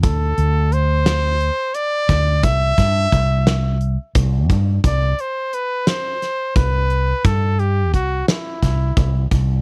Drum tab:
HH |xxxxxxx|xxxxxxx|xxxxxxx|xxxxxxx|
SD |---o--o|-o-o---|---oo--|---oo--|
BD |o-----o|ooo--oo|o----o-|o-o-ooo|